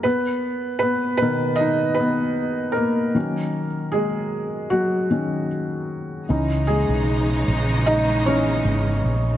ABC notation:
X:1
M:4/4
L:1/16
Q:1/4=77
K:C#dor
V:1 name="Felt piano"
[B,B]4 [B,B]2 [B,B]2 [Dd]2 [B,B]4 [A,A]2- | [A,A]2 z2 [G,G]4 [F,F]4 z4 | z2 [G,G]6 [Dd]2 c6 |]
V:2 name="Felt piano" clef=bass
z6 [B,,D,A]2 z8 | [D,F,C]2 z8 [D,F,C]2 z4 | [E,CD]2 z8 [E,CD]2 z4 |]
V:3 name="String section" clef=bass
z16 | z16 | [C,E,G,D]16 |]
V:4 name="Fretless electric bass" clef=bass
z16 | z16 | C,,3 B,,,3 A,,,6 G,,,2 A,,,2 |]